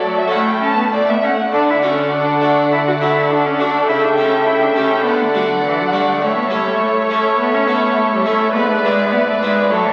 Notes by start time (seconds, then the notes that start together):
Already playing: A2 A3 D4 F#4 A4 D5
0.02 F#3
0.17 E5
0.28 A3 C#4 E4 F#5
0.32 A2 A3
0.48 G5
0.62 A3 C#4 A5
0.77 B3
0.92 A2 A3 D5
1.09 B3 E5
1.22 A3 C#4 F#5
1.52 D3 D4 A4 D5 F#5
1.70 E4
1.82 A3 C#4 D4 F#4
2.12 D4
2.41 A3 D4 F#4
2.72 E4
2.87 F#4
3.01 A3 D4 E4 F#4
3.31 D4
3.46 C#4
3.59 A3 D4 F#4
3.88 C#3 E4 E5 G5
4.04 D4
4.17 A3 C#4 E4 G4
4.47 E4
4.63 D4
4.76 A3 C#4 E4 G4
5.04 D3 B3 D5 F#5
5.20 A3
5.34 G3 A3 D4 F#4
5.50 F#3
5.63 E3
5.80 F#3
5.92 G3 A3 D4 F#4
6.21 A2 A3 A4 C#5 E5
6.38 B3
6.50 G3 A3 C#4 E4
6.81 A3
7.10 A3 C#4 E4
7.38 B3
7.54 C#4
7.67 A3 B3 C#4 E4
7.97 A3
8.14 G3
8.25 A3 C#4 E4
8.54 G#2 B3 B4 D5
8.70 A3
8.84 G#3 B3 D4 E4
9.12 B3
9.28 A3
9.41 G#3 B3 D4 E4
9.70 A2 F#3 A4 C#5 A5
9.86 E3